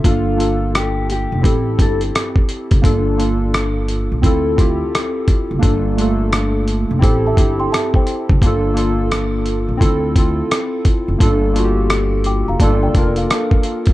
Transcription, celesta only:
X:1
M:4/4
L:1/16
Q:"Swing 16ths" 1/4=86
K:Gdor
V:1 name="Celesta"
z16 | z16 | z8 [cg] [ea]2 [gc'] [ea] [cg]3 | z16 |
z6 [gd'] [fb] [da] [dg]2 [Bf]4- [Bf] |]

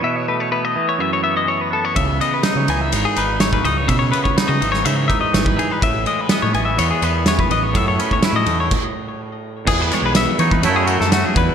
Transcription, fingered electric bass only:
X:1
M:4/4
L:1/16
Q:1/4=124
K:C#m
V:1 name="Fingered electric bass" clef=bass
z16 | C,,2 z3 C, C,,2 G,,, z G,,,4 C,,2 | B,,2 z3 C, G,,,2 C,2 z2 G,,,2 z2 | A,,,2 z3 A,, A,,,2 E,, z E,,4 A,,,2 |
F,,2 z3 A,, E,,2 z8 | E,,2 z B,,,2 z E,2 F,,3 F,,2 z E,, z |]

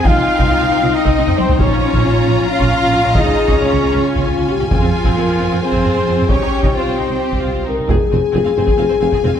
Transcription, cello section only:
X:1
M:7/8
L:1/16
Q:1/4=134
K:Cphr
V:1 name="Cello section" clef=bass
F8 E4 C2 | D8 F6 | E4 D6 z4 | F,8 C6 |
D4 C8 z2 | [K:Fm] F,, z F,, z F,, F,, F,, F,, F,, F,, F,, F,, F,, F,, |]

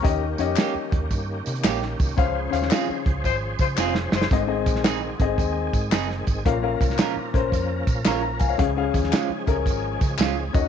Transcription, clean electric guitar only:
X:1
M:4/4
L:1/8
Q:"Swing" 1/4=112
K:Db
V:1 name="Clean electric guitar"
z2 [B,D=G] z3 [B,DG] z | z2 [CFA] z3 [CFA] z | z2 [CEA] z3 [CEA] z | z2 [DFB] z3 [DFB] z |
z2 [A,DF] z3 [A,DF] z |]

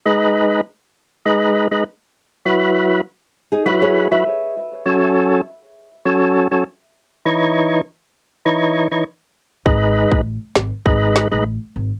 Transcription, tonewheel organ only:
X:1
M:4/4
L:1/16
Q:1/4=100
K:G#phr
V:1 name="Tonewheel organ"
[G,DB]4 z4 [G,DB]3 [G,DB] z4 | [F,EB]4 z4 [F,EB]3 [F,EB] z4 | [F,CA]4 z4 [F,CA]3 [F,CA] z4 | [E,Dc]4 z4 [E,Dc]3 [E,Dc] z4 |
[G,DB]4 z4 [G,DB]3 [G,DB] z4 |]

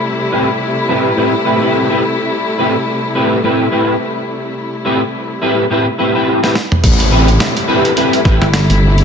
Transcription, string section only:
X:1
M:4/4
L:1/8
Q:"Swing 16ths" 1/4=106
K:Am
V:1 name="String section" clef=bass
[C,G,A,E]8- | [C,G,A,E]8- | [C,G,A,E]6 z2 | [C,G,A,E]8 |]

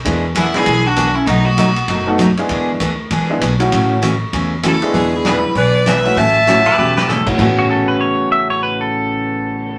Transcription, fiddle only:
X:1
M:4/4
L:1/8
Q:"Swing" 1/4=196
K:A
V:1 name="Fiddle"
z2 E G2 F2 E | ^D F4 z3 | z8 | z6 A2 |
G G B2 d2 e2 | a6 z2 | z8 | z8 |]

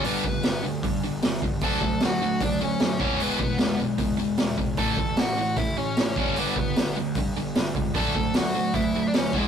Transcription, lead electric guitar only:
X:1
M:4/4
L:1/16
Q:1/4=152
K:Dlyd
V:1 name="Lead electric guitar"
[B,B]2 [B,B]4 z8 z2 | [Aa]4 [Ff]4 [Dd]2 [Cc]4 [Cc]2 | [B,B]2 [B,B]4 z8 z2 | [Aa]4 [Ff]4 [Ee]2 [Cc]4 [Cc]2 |
[B,B]2 [B,B]4 z8 z2 | [Aa]4 [Ff]4 [Ee]3 [Dd] [Cc]2 [G,G]2 |]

